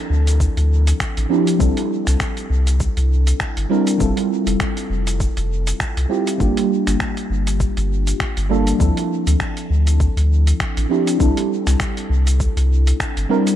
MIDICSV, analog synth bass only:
0, 0, Header, 1, 2, 480
1, 0, Start_track
1, 0, Tempo, 600000
1, 1281, Time_signature, 4, 2, 24, 8
1, 10846, End_track
2, 0, Start_track
2, 0, Title_t, "Analog synth bass"
2, 0, Program_c, 0, 38
2, 81, Note_on_c, 0, 38, 86
2, 383, Note_off_c, 0, 38, 0
2, 458, Note_on_c, 0, 38, 95
2, 745, Note_off_c, 0, 38, 0
2, 939, Note_on_c, 0, 33, 77
2, 1006, Note_off_c, 0, 33, 0
2, 1282, Note_on_c, 0, 36, 97
2, 1372, Note_off_c, 0, 36, 0
2, 1657, Note_on_c, 0, 36, 83
2, 1726, Note_off_c, 0, 36, 0
2, 2000, Note_on_c, 0, 36, 83
2, 2303, Note_off_c, 0, 36, 0
2, 2378, Note_on_c, 0, 36, 98
2, 2665, Note_off_c, 0, 36, 0
2, 2857, Note_on_c, 0, 31, 83
2, 2925, Note_off_c, 0, 31, 0
2, 3203, Note_on_c, 0, 29, 97
2, 3292, Note_off_c, 0, 29, 0
2, 3574, Note_on_c, 0, 29, 83
2, 3644, Note_off_c, 0, 29, 0
2, 3920, Note_on_c, 0, 29, 83
2, 4223, Note_off_c, 0, 29, 0
2, 4298, Note_on_c, 0, 29, 93
2, 4585, Note_off_c, 0, 29, 0
2, 4777, Note_on_c, 0, 36, 83
2, 4846, Note_off_c, 0, 36, 0
2, 5123, Note_on_c, 0, 31, 99
2, 5212, Note_off_c, 0, 31, 0
2, 5498, Note_on_c, 0, 31, 77
2, 5566, Note_off_c, 0, 31, 0
2, 5840, Note_on_c, 0, 31, 85
2, 6143, Note_off_c, 0, 31, 0
2, 6218, Note_on_c, 0, 31, 99
2, 6505, Note_off_c, 0, 31, 0
2, 6697, Note_on_c, 0, 31, 96
2, 6985, Note_off_c, 0, 31, 0
2, 7041, Note_on_c, 0, 38, 101
2, 7131, Note_off_c, 0, 38, 0
2, 7417, Note_on_c, 0, 38, 82
2, 7486, Note_off_c, 0, 38, 0
2, 7762, Note_on_c, 0, 38, 86
2, 8064, Note_off_c, 0, 38, 0
2, 8135, Note_on_c, 0, 38, 96
2, 8423, Note_off_c, 0, 38, 0
2, 8617, Note_on_c, 0, 33, 83
2, 8686, Note_off_c, 0, 33, 0
2, 8962, Note_on_c, 0, 36, 103
2, 9052, Note_off_c, 0, 36, 0
2, 9335, Note_on_c, 0, 36, 76
2, 9405, Note_off_c, 0, 36, 0
2, 9678, Note_on_c, 0, 36, 85
2, 9982, Note_off_c, 0, 36, 0
2, 10055, Note_on_c, 0, 36, 100
2, 10343, Note_off_c, 0, 36, 0
2, 10536, Note_on_c, 0, 31, 80
2, 10605, Note_off_c, 0, 31, 0
2, 10846, End_track
0, 0, End_of_file